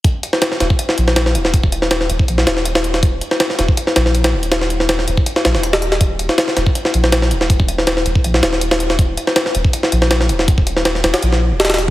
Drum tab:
HH |x---x---x---x---x---x---x---x---|x---x---x---x---x---x---x---x---|x---x---x---x---x---x---x-x---x-|x---x---x---x---x---x---x---x---|
SD |------o-o-o-o-----o---o-o-o---o-|------o-o-o-------o-o-o---o---o-|------o-o-o-o-----o-o-o---o-----|o-o---o-o-o-------o-o-o---o---o-|
BD |o-------------o-----------------|o-o-----------o-----------------|o-------------o-----------------|--------------o-----------------|

HH |x---x---x---x---x---x---x---x---|x---x---x---x---x---x---x---x---|x---x---x---x---x---x---x---x---|x---x---x---x-x-x-------xxxxx---|
SD |------o-o-o-o-----o---o-o-o---o-|------o-o-o-------o-o-o---o---o-|------o-o-o-------o---o-o-o---o-|------o-o-o-o-o---o-----ooooo---|
BD |o-------------o-----------------|o-o-----------o-----------------|o-------------o-----------------|o-o-----------------------------|